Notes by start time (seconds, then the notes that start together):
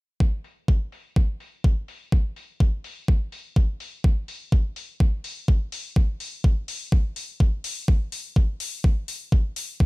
0.20 kick
0.44 open hi-hat
0.68 kick
0.92 open hi-hat
1.16 kick
1.40 open hi-hat
1.64 kick
1.88 open hi-hat
2.12 kick
2.36 open hi-hat
2.60 kick
2.84 open hi-hat
3.08 kick
3.32 open hi-hat
3.56 kick
3.80 open hi-hat
4.04 kick
4.28 open hi-hat
4.52 kick
4.76 open hi-hat
5.00 kick
5.24 open hi-hat
5.48 kick
5.72 open hi-hat
5.96 kick
6.20 open hi-hat
6.44 kick
6.68 open hi-hat
6.92 kick
7.16 open hi-hat
7.40 kick
7.64 open hi-hat
7.88 kick
8.12 open hi-hat
8.36 kick
8.60 open hi-hat
8.84 kick
9.08 open hi-hat
9.32 kick
9.56 open hi-hat
9.80 kick